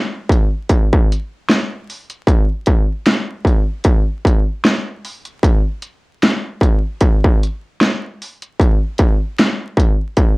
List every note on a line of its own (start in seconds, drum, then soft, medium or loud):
0.29 kick loud
0.29 closed hi-hat medium
0.69 kick loud
0.69 closed hi-hat medium
0.93 kick loud
1.12 closed hi-hat medium
1.50 snare loud
1.50 closed hi-hat medium
1.90 open hi-hat soft
2.10 closed hi-hat medium
2.27 kick loud
2.27 closed hi-hat medium
2.66 kick medium
2.66 closed hi-hat medium
3.06 snare loud
3.06 closed hi-hat medium
3.45 kick medium
3.45 closed hi-hat medium
3.84 kick loud
3.84 closed hi-hat medium
4.25 kick medium
4.25 closed hi-hat medium
4.65 snare loud
4.65 closed hi-hat medium
5.05 open hi-hat medium
5.25 closed hi-hat soft
5.43 kick loud
5.43 closed hi-hat medium
5.82 closed hi-hat medium
6.23 snare loud
6.23 closed hi-hat medium
6.61 kick loud
6.61 closed hi-hat medium
7.01 kick loud
7.01 closed hi-hat medium
7.24 kick medium
7.43 closed hi-hat medium
7.81 snare loud
7.81 closed hi-hat medium
8.22 open hi-hat soft
8.42 closed hi-hat medium
8.59 kick loud
8.59 closed hi-hat medium
8.98 kick medium
8.98 closed hi-hat medium
9.39 snare loud
9.39 closed hi-hat medium
9.77 kick medium
9.77 closed hi-hat medium
10.17 kick loud
10.17 closed hi-hat medium